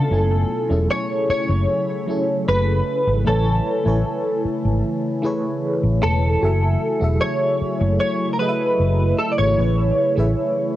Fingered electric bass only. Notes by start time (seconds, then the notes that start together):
0.11 F#1
0.70 E1
1.29 muted fingered electric bass stroke
1.49 F#1
2.48 F#1
3.07 G#1
3.27 A1
3.86 A1
4.45 muted fingered electric bass stroke
4.65 G#1
5.83 A1
6.03 E1
6.43 F#1
7.02 E1
7.61 muted fingered electric bass stroke
7.81 F#1
8.80 F#1
9.39 G#1
9.58 A1
10.18 A1